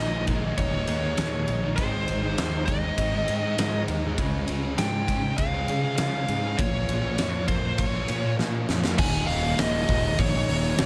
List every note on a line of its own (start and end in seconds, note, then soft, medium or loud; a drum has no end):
0.00 0.50 A#1 medium
0.00 0.56 D#2 medium
0.00 0.88 D#2 medium
0.00 0.57 A#2 medium
0.00 0.24 D#3 loud
0.00 0.26 G#3 medium
0.00 0.26 A#3 loud
0.00 0.28 D#4 loud
0.00 0.24 D#5 medium
0.26 0.73 D#2 medium
0.26 0.43 A#2 medium
0.26 0.43 D#3 medium
0.26 0.43 G#3 medium
0.26 0.41 A#3 medium
0.26 0.40 D#4 loud
0.26 kick medium
0.26 ride medium
0.41 0.72 D#3 medium
0.41 0.72 G#3 medium
0.41 0.70 A#3 medium
0.41 0.70 D#4 medium
0.41 muted distorted electric guitar stroke medium
0.58 0.84 D#1 medium
0.58 1.48 D#4 medium
0.58 1.75 C#5 medium
0.58 kick medium
0.58 ride medium
0.71 0.85 D#3 medium
0.71 0.87 G#3 medium
0.71 0.87 A#3 medium
0.71 0.87 D#4 medium
0.75 0.87 A#2 medium
0.87 1.16 D#2 medium
0.87 1.14 D#2 medium
0.87 1.03 A#2 loud
0.87 1.03 D#3 medium
0.87 1.03 G#3 medium
0.87 1.01 A#3 medium
0.87 1.00 D#4 medium
0.87 ride medium
1.02 1.16 D#3 medium
1.02 1.17 G#3 medium
1.02 1.17 A#3 medium
1.02 1.18 D#4 medium
1.02 muted distorted electric guitar stroke medium
1.17 1.62 D#2 medium
1.17 1.44 D#2 medium
1.17 1.63 A#2 medium
1.17 1.33 D#3 medium
1.17 1.33 G#3 loud
1.17 1.32 A#3 loud
1.17 1.31 D#4 loud
1.17 snare loud
1.17 ride medium
1.32 1.63 D#3 medium
1.32 1.64 G#3 medium
1.32 1.62 A#3 medium
1.32 1.61 D#4 medium
1.48 1.74 A#1 loud
1.48 1.79 D#4 medium
1.48 ride medium
1.62 1.77 A#2 medium
1.62 1.77 D#3 medium
1.62 1.79 G#3 medium
1.62 1.76 A#3 medium
1.62 1.76 D#4 medium
1.76 2.04 G#1 loud
1.76 2.36 G#2 loud
1.76 2.06 D#3 loud
1.76 2.09 G#3 loud
1.76 2.09 C4 loud
1.76 2.65 C5 medium
1.76 kick loud
1.76 ride medium
1.80 2.09 D#4 loud
2.08 2.34 G#1 medium
2.08 2.37 D#3 medium
2.08 2.25 G#3 medium
2.08 2.23 C4 medium
2.08 2.21 D#4 medium
2.08 ride medium
2.22 2.37 D#3 medium
2.22 2.38 G#3 medium
2.22 2.38 C4 medium
2.22 2.38 D#4 medium
2.37 2.89 D#2 medium
2.37 2.98 G#2 medium
2.37 2.65 D#3 medium
2.37 2.68 G#3 medium
2.37 2.68 C4 medium
2.37 2.68 D#4 loud
2.37 snare loud
2.37 ride medium
2.66 3.13 G#2 medium
2.66 3.12 D#3 medium
2.66 2.84 G#3 medium
2.66 2.82 C4 medium
2.66 2.80 D#4 medium
2.66 3.83 D#5 medium
2.66 kick medium
2.66 ride medium
2.82 3.14 G#3 medium
2.82 3.12 C4 medium
2.82 3.11 D#4 medium
2.82 muted distorted electric guitar stroke medium
2.98 3.24 G#1 medium
2.98 3.87 D#4 medium
2.98 kick medium
2.98 ride loud
3.12 3.27 D#3 medium
3.12 3.28 G#3 medium
3.12 3.28 C4 medium
3.12 3.29 D#4 medium
3.27 3.56 G#2 medium
3.27 3.54 G#2 loud
3.27 3.57 D#3 medium
3.27 3.44 G#3 medium
3.27 3.42 C4 medium
3.27 3.41 D#4 medium
3.27 ride medium
3.42 3.58 G#3 medium
3.42 3.58 C4 medium
3.42 3.58 D#4 medium
3.42 muted distorted electric guitar stroke medium
3.57 4.03 G#2 loud
3.57 3.84 G#2 medium
3.57 4.03 D#3 medium
3.57 3.74 G#3 loud
3.57 3.72 C4 medium
3.57 3.71 D#4 loud
3.57 snare loud
3.57 ride loud
3.72 4.04 G#3 medium
3.72 4.02 C4 medium
3.72 4.01 D#4 medium
3.88 4.18 D#2 loud
3.88 4.18 D#4 medium
3.88 ride medium
4.02 4.18 D#3 medium
4.02 4.18 G#3 medium
4.02 4.16 C4 medium
4.02 4.16 D#4 medium
4.17 4.44 C#2 loud
4.17 4.76 C#3 loud
4.17 4.47 G#3 loud
4.17 4.48 C#4 loud
4.17 4.49 F4 loud
4.17 4.50 G#4 loud
4.17 kick loud
4.17 ride loud
4.48 4.74 C#2 medium
4.48 4.78 G#3 medium
4.48 4.64 C#4 medium
4.48 4.63 F4 medium
4.48 4.61 G#4 medium
4.48 ride medium
4.62 4.78 G#3 medium
4.62 4.79 C#4 medium
4.62 4.79 F4 medium
4.62 4.79 G#4 medium
4.78 5.30 G#2 loud
4.78 5.38 C#3 medium
4.78 5.06 G#3 loud
4.78 5.07 C#4 loud
4.78 5.08 F4 loud
4.78 5.09 G#4 loud
4.78 5.37 G5 loud
4.78 snare loud
4.78 ride medium
5.06 5.53 C#3 medium
5.06 5.68 G#3 medium
5.06 5.25 C#4 medium
5.06 5.23 F4 medium
5.06 5.22 G#4 medium
5.06 kick medium
5.06 ride medium
5.23 5.54 C#4 medium
5.23 5.53 F4 medium
5.23 5.52 G#4 medium
5.23 muted distorted electric guitar stroke medium
5.38 5.64 C#2 medium
5.38 6.28 G#4 medium
5.38 5.95 F5 loud
5.38 kick medium
5.38 ride medium
5.52 5.68 G#3 medium
5.52 5.69 C#4 medium
5.52 5.69 F4 medium
5.52 5.71 G#4 medium
5.67 5.96 C#3 medium
5.67 5.95 C#3 loud
5.67 5.98 G#3 medium
5.67 5.85 C#4 medium
5.67 5.83 F4 medium
5.67 ride medium
5.71 5.82 G#4 medium
5.82 5.98 C#4 medium
5.82 5.98 F4 medium
5.82 5.99 G#4 medium
5.82 muted distorted electric guitar stroke medium
5.96 6.43 C#3 loud
5.96 6.24 C#3 medium
5.96 6.57 G#3 loud
5.96 6.15 C#4 medium
5.96 6.13 F4 loud
5.96 6.13 G#4 medium
5.96 6.59 F5 medium
5.96 snare loud
5.96 ride loud
6.13 6.44 C#4 medium
6.13 6.43 F4 medium
6.13 6.42 G#4 medium
6.28 6.54 G#2 medium
6.28 6.62 G#4 medium
6.28 ride medium
6.43 6.58 G#3 medium
6.43 6.58 C#4 medium
6.43 6.57 F4 medium
6.43 6.59 G#4 medium
6.57 6.85 A#1 loud
6.57 7.17 A#2 loud
6.57 6.87 F3 loud
6.57 6.88 A#3 loud
6.57 6.88 C#4 loud
6.57 6.89 F4 loud
6.57 7.47 C#5 loud
6.57 kick loud
6.57 ride loud
6.88 7.14 A#1 medium
6.88 7.17 F3 medium
6.88 7.04 A#3 medium
6.88 7.03 C#4 medium
6.88 7.02 F4 medium
6.88 ride medium
7.03 7.17 F3 medium
7.03 7.18 A#3 medium
7.03 7.19 C#4 medium
7.03 7.19 F4 medium
7.18 7.70 F2 loud
7.18 7.78 A#2 medium
7.18 7.47 F3 medium
7.18 7.48 A#3 loud
7.18 7.48 C#4 loud
7.18 7.49 F4 loud
7.18 snare loud
7.18 ride medium
7.48 7.94 A#2 medium
7.48 7.94 F3 medium
7.48 7.64 A#3 medium
7.48 7.63 C#4 loud
7.48 7.61 F4 medium
7.48 7.79 C5 medium
7.48 kick medium
7.48 ride medium
7.62 7.95 A#3 medium
7.62 7.94 C#4 medium
7.62 7.92 F4 medium
7.62 muted distorted electric guitar stroke medium
7.78 8.05 A#1 medium
7.78 8.68 F4 medium
7.78 8.35 C#5 medium
7.78 kick medium
7.78 ride loud
7.94 8.08 F3 medium
7.94 8.07 A#3 medium
7.94 8.08 C#4 medium
7.94 8.09 F4 medium
8.07 8.37 A#2 medium
8.07 8.35 A#2 loud
8.07 8.37 F3 medium
8.07 8.24 A#3 medium
8.07 8.23 C#4 medium
8.07 8.22 F4 medium
8.07 ride medium
8.23 8.38 A#3 medium
8.23 8.39 C#4 medium
8.23 8.39 F4 medium
8.23 muted distorted electric guitar stroke medium
8.38 8.84 A#2 loud
8.38 8.65 A#2 medium
8.38 8.84 F3 loud
8.38 8.54 A#3 loud
8.38 8.53 C#4 medium
8.38 8.52 F4 medium
8.38 snare medium
8.53 8.84 A#3 medium
8.53 8.84 C#4 medium
8.53 8.82 F4 medium
8.69 8.95 F2 medium
8.69 8.99 F4 medium
8.69 snare medium
8.84 8.98 F3 medium
8.84 8.98 A#3 medium
8.84 8.98 C#4 medium
8.84 8.97 F4 medium
8.84 snare medium
8.98 9.23 D#1 loud
8.98 10.86 D#2 medium
8.98 10.86 A#2 medium
8.98 10.86 D#3 loud
8.98 10.86 G#3 medium
8.98 10.86 A#3 medium
8.98 9.27 G#5 loud
8.98 kick loud
8.98 crash loud
9.03 10.86 D#4 loud
9.27 9.53 D#1 medium
9.27 10.79 A#2 medium
9.27 9.59 A#2 medium
9.27 9.60 D#3 medium
9.27 9.59 F5 loud
9.27 open hi-hat medium
9.58 9.83 D#1 medium
9.58 10.17 D#2 medium
9.58 9.90 A#2 medium
9.58 9.88 D#3 medium
9.58 10.86 G#3 medium
9.58 10.19 D#5 loud
9.58 snare loud
9.58 open hi-hat medium
9.89 10.13 D#1 medium
9.89 10.18 A#2 medium
9.89 10.86 D#3 medium
9.89 10.19 D#3 medium
9.89 kick loud
9.89 open hi-hat medium
10.18 10.43 A#1 loud
10.18 10.77 D#2 medium
10.18 10.49 A#2 loud
10.18 10.48 D#3 loud
10.18 10.79 A#3 medium
10.18 10.86 C#5 medium
10.18 kick medium
10.18 open hi-hat medium
10.49 10.74 D#1 medium
10.49 10.79 A#2 medium
10.49 10.79 D#3 medium
10.49 10.86 D#4 medium
10.49 open hi-hat medium
10.78 10.86 D#1 medium
10.78 10.86 D#2 medium
10.78 10.86 A#2 medium
10.78 10.86 D#3 medium
10.78 10.86 A#3 medium
10.78 snare loud
10.78 open hi-hat medium